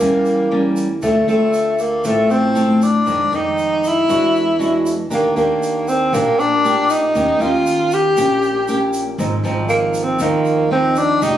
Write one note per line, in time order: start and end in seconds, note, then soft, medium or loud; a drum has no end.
0.00 0.99 E2 medium
0.00 1.00 E3 soft
0.00 0.48 G3 soft
0.00 0.78 A#3 medium
0.00 0.47 A#3 medium
0.00 0.48 C#4 medium
0.00 shaker medium
0.25 shaker soft
0.51 0.86 G3 medium
0.51 0.86 A#3 medium
0.51 0.86 C#4 medium
0.77 shaker medium
1.02 1.26 D2 medium
1.02 2.02 D3 medium
1.02 1.17 A3 medium
1.02 1.27 A3 medium
1.02 1.18 C4 soft
1.02 1.18 F4 medium
1.02 shaker medium
1.28 2.00 D2 medium
1.28 2.01 A3 medium
1.28 1.82 A3 medium
1.28 2.01 C4 soft
1.28 2.01 F4 medium
1.28 shaker soft
1.53 shaker medium
1.79 2.07 A#3 medium
1.79 shaker medium
2.04 3.03 A1 medium
2.04 3.04 A2 soft
2.04 2.51 A3 medium
2.04 2.32 A3 medium
2.04 2.52 C4 medium
2.04 2.52 F4 medium
2.04 shaker medium
2.30 2.85 C4 medium
2.30 shaker soft
2.55 2.90 A3 medium
2.55 2.90 C4 medium
2.55 2.90 F4 medium
2.55 shaker soft
2.82 3.37 D4 medium
2.82 shaker medium
3.06 4.06 F2 medium
3.06 3.31 F2 medium
3.06 3.21 D#3 medium
3.06 3.21 G#3 soft
3.06 3.22 C4 medium
3.06 shaker medium
3.32 4.05 F2 medium
3.32 4.04 D#3 soft
3.32 4.05 G#3 soft
3.32 4.05 C4 medium
3.32 3.89 D#4 medium
3.32 shaker soft
3.58 shaker soft
3.84 4.87 E4 medium
3.84 shaker medium
4.08 5.07 E2 medium
4.08 5.08 E3 medium
4.08 4.41 G#3 soft
4.08 4.42 D4 soft
4.08 4.42 F#4 medium
4.08 shaker medium
4.36 shaker soft
4.59 4.94 G#3 medium
4.59 4.94 D4 medium
4.59 4.94 F#4 medium
4.59 shaker soft
4.86 shaker medium
5.10 5.35 D#2 medium
5.10 6.10 D#3 soft
5.10 5.32 A#3 soft
5.10 5.36 A#3 medium
5.10 5.32 D4 soft
5.10 5.32 G4 soft
5.10 shaker medium
5.36 6.09 D#2 medium
5.36 6.09 A#3 medium
5.36 5.90 A#3 medium
5.36 6.09 D4 medium
5.36 6.09 G4 medium
5.36 shaker soft
5.63 shaker medium
5.88 6.15 C4 medium
5.88 shaker medium
6.13 7.11 A#1 medium
6.13 7.13 A#2 medium
6.13 6.41 A#3 medium
6.13 6.46 A#3 medium
6.13 6.46 D4 soft
6.13 6.46 G4 medium
6.13 shaker medium
6.39 6.91 D4 loud
6.39 shaker soft
6.65 6.98 A#3 soft
6.65 6.99 D4 medium
6.65 6.99 G4 medium
6.65 shaker medium
6.90 7.43 D#4 medium
6.90 shaker medium
7.15 7.39 D#2 medium
7.15 8.14 D#3 medium
7.15 7.36 A#3 soft
7.15 7.37 C#4 soft
7.15 7.37 G4 medium
7.15 shaker medium
7.40 8.13 D#2 medium
7.40 8.12 A#3 medium
7.40 8.13 C#4 medium
7.40 7.95 F4 loud
7.40 8.13 G4 medium
7.40 shaker soft
7.66 shaker medium
7.91 8.95 G4 medium
7.91 shaker medium
8.17 9.15 A#1 medium
8.17 9.16 A#2 soft
8.17 8.50 A#3 soft
8.17 8.50 C#4 medium
8.17 8.50 G4 medium
8.17 shaker medium
8.43 shaker soft
8.68 9.02 A#3 medium
8.68 9.02 C#4 medium
8.68 9.03 G4 medium
8.68 shaker soft
8.93 shaker medium
9.18 9.42 G#1 medium
9.18 10.18 G#2 soft
9.18 9.34 F3 medium
9.18 9.34 C4 medium
9.18 9.34 D#4 soft
9.18 shaker medium
9.43 10.16 G#1 medium
9.43 10.17 F3 medium
9.43 10.17 C4 medium
9.43 10.17 D#4 medium
9.43 shaker soft
9.69 10.05 A#3 medium
9.69 shaker soft
9.94 shaker medium
10.03 10.23 C4 medium
10.19 11.18 D#2 medium
10.19 11.20 D#3 medium
10.19 10.67 F3 medium
10.19 10.72 A#3 medium
10.19 10.68 C4 soft
10.19 10.68 D#4 medium
10.19 shaker medium
10.45 shaker soft
10.71 11.20 F3 soft
10.71 11.21 C4 medium
10.71 10.99 C4 medium
10.71 11.21 D#4 medium
10.96 11.24 D4 medium
10.96 shaker medium
11.21 11.38 F1 medium
11.21 11.38 F3 soft
11.21 11.38 G#3 soft
11.21 11.38 D#4 soft
11.21 11.38 D#4 loud
11.21 11.38 G4 medium
11.21 shaker medium